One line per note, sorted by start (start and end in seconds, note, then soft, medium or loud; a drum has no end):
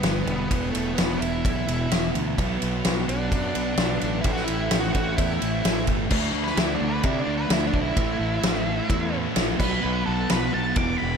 0.00 0.23 G1 medium
0.00 0.49 G2 medium
0.00 0.23 B3 medium
0.00 snare loud
0.00 ride loud
0.05 0.50 D3 medium
0.05 0.50 G3 medium
0.24 0.46 E1 medium
0.24 0.70 B3 medium
0.24 ride medium
0.49 0.71 E1 loud
0.49 1.65 E2 medium
0.49 1.66 B2 medium
0.49 1.65 E3 loud
0.49 kick medium
0.49 ride medium
0.71 0.94 A3 medium
0.75 0.94 E1 medium
0.75 ride medium
0.95 1.18 E1 medium
0.95 1.20 B3 medium
0.95 snare loud
0.95 ride loud
1.18 1.40 E1 medium
1.18 2.09 E4 medium
1.18 ride medium
1.45 1.64 B1 medium
1.45 kick loud
1.45 ride medium
1.66 1.87 E1 medium
1.66 1.90 E2 medium
1.66 1.90 B2 medium
1.66 1.89 E3 medium
1.66 ride medium
1.91 2.11 E1 medium
1.91 2.36 E2 medium
1.91 2.36 B2 medium
1.91 2.37 E3 medium
1.91 snare loud
1.91 ride loud
2.14 2.34 D2 medium
2.14 ride medium
2.37 2.58 B1 loud
2.37 3.53 B2 medium
2.37 3.53 F#3 medium
2.37 3.53 B3 medium
2.37 4.22 D4 medium
2.37 6.07 A4 medium
2.37 4.22 B4 medium
2.37 4.23 F#5 medium
2.37 kick medium
2.37 ride medium
2.62 2.82 B1 medium
2.62 ride medium
2.85 3.05 B1 medium
2.85 snare loud
2.85 ride loud
3.09 3.28 B1 medium
3.09 3.99 D4 medium
3.09 ride medium
3.32 3.51 F#2 medium
3.32 kick loud
3.32 ride medium
3.54 3.75 B1 medium
3.54 3.76 B2 medium
3.54 3.76 F#3 medium
3.54 3.76 B3 medium
3.54 ride medium
3.77 3.97 B1 medium
3.77 4.23 B2 medium
3.77 4.23 F#3 medium
3.77 4.24 B3 medium
3.77 snare loud
3.77 ride medium
4.00 4.22 A1 loud
4.00 4.21 D4 medium
4.00 ride medium
4.21 4.44 A1 loud
4.21 5.39 A2 medium
4.21 5.39 E3 medium
4.21 4.32 E4 loud
4.21 kick medium
4.21 ride medium
4.26 5.39 A3 loud
4.26 6.10 E4 medium
4.26 6.10 C5 medium
4.26 6.10 G5 medium
4.33 4.44 F#4 loud
4.33 snare soft
4.44 4.79 E4 medium
4.44 ride medium
4.49 4.68 A1 medium
4.71 4.92 A1 medium
4.71 snare loud
4.71 ride loud
4.79 4.91 F#4 loud
4.93 5.14 A1 medium
4.93 5.16 F#4 medium
4.93 kick medium
4.93 ride medium
5.17 5.37 E2 medium
5.17 5.83 E4 medium
5.17 kick loud
5.17 ride loud
5.40 5.61 A1 medium
5.40 5.62 A2 medium
5.40 5.63 E3 medium
5.40 5.62 A3 medium
5.40 ride medium
5.64 5.84 A1 medium
5.64 6.09 A2 medium
5.64 6.09 E3 medium
5.64 6.10 A3 medium
5.64 snare loud
5.64 ride loud
5.87 6.07 G1 medium
5.87 kick medium
5.87 ride medium
6.10 6.29 D2 medium
6.10 6.32 D3 medium
6.10 7.95 D3 medium
6.10 9.56 A3 medium
6.10 6.33 A3 medium
6.10 6.33 D4 loud
6.10 7.94 F#4 medium
6.10 7.95 D5 medium
6.10 kick loud
6.10 crash loud
6.33 6.51 D2 medium
6.33 6.56 D3 medium
6.33 6.57 A3 medium
6.33 6.56 D4 medium
6.44 6.58 B4 medium
6.44 snare soft
6.57 6.75 D2 medium
6.57 6.79 D3 medium
6.57 6.79 A3 medium
6.57 6.80 D4 loud
6.57 6.75 E4 medium
6.57 snare loud
6.57 ride bell medium
6.75 6.89 D4 medium
6.80 6.99 D2 medium
6.80 7.01 D3 medium
6.80 7.02 A3 medium
6.80 7.02 D4 medium
6.89 7.03 B4 medium
7.02 7.22 C3 loud
7.02 7.25 D3 medium
7.02 7.26 A3 medium
7.02 7.26 D4 loud
7.02 7.20 E4 medium
7.02 kick loud
7.02 ride bell medium
7.20 7.34 D4 medium
7.26 7.45 D2 medium
7.26 7.47 D3 medium
7.26 7.48 A3 medium
7.26 7.48 D4 medium
7.38 7.51 B4 medium
7.48 7.68 D2 medium
7.48 7.72 D3 medium
7.48 7.72 A3 medium
7.48 7.72 D4 medium
7.48 snare loud
7.48 ride bell medium
7.53 7.66 E4 medium
7.67 7.81 D4 medium
7.73 7.92 B1 loud
7.73 7.95 D3 medium
7.73 7.95 A3 loud
7.73 7.95 D4 medium
7.73 kick medium
7.82 9.17 E4 medium
7.94 8.15 A1 loud
7.94 8.17 A2 loud
7.94 8.17 E3 medium
7.94 8.18 A3 medium
7.94 9.56 A4 medium
7.94 9.57 C5 medium
7.94 9.56 E5 medium
7.94 kick loud
7.94 ride bell medium
8.18 8.38 A1 medium
8.18 8.40 A2 medium
8.18 8.41 E3 medium
8.18 8.41 A3 medium
8.41 8.80 A1 medium
8.41 8.64 A2 medium
8.41 8.65 E3 loud
8.41 8.65 A3 loud
8.41 snare loud
8.41 ride bell medium
8.65 8.88 A2 medium
8.65 8.89 E3 medium
8.65 8.89 A3 loud
8.89 9.26 E2 medium
8.89 9.11 A2 medium
8.89 9.12 E3 loud
8.89 9.12 A3 loud
8.89 kick loud
8.89 ride bell medium
9.13 9.34 A2 medium
9.13 9.35 E3 medium
9.13 9.35 A3 medium
9.36 9.54 A#1 medium
9.36 9.58 A2 medium
9.36 9.58 E3 medium
9.36 9.58 A3 medium
9.36 snare loud
9.36 ride bell medium
9.58 9.78 B1 loud
9.58 9.81 B2 loud
9.58 9.81 F#3 loud
9.58 9.82 B3 loud
9.58 10.75 B3 medium
9.58 11.17 B4 medium
9.58 10.05 B4 loud
9.58 10.75 D#5 medium
9.58 10.75 F#5 medium
9.58 kick loud
9.58 snare soft
9.58 crash medium
9.82 10.02 B1 loud
9.82 10.04 B2 medium
9.82 10.04 F#3 medium
9.82 10.05 B3 loud
10.05 10.25 B1 loud
10.05 10.29 B2 medium
10.05 10.29 F#3 medium
10.05 10.29 B3 medium
10.05 10.28 A4 medium
10.30 10.49 B1 loud
10.30 10.52 B2 medium
10.30 10.52 F#3 medium
10.30 10.52 B3 loud
10.30 10.53 B4 medium
10.30 snare loud
10.30 ride bell medium
10.53 10.72 B1 medium
10.53 10.74 B2 medium
10.53 10.75 F#3 medium
10.53 10.75 B3 medium
10.53 10.75 A5 medium
10.76 10.94 E1 medium
10.76 10.99 E2 medium
10.76 10.99 B2 medium
10.76 11.17 E3 medium
10.76 11.00 E3 loud
10.76 11.17 E4 medium
10.76 11.17 G4 medium
10.76 10.97 D6 medium
10.76 kick loud
10.76 ride bell medium
10.98 11.17 E2 medium
10.98 11.17 B2 loud
10.98 11.17 E3 medium
10.98 11.17 B5 medium
11.02 11.17 E1 medium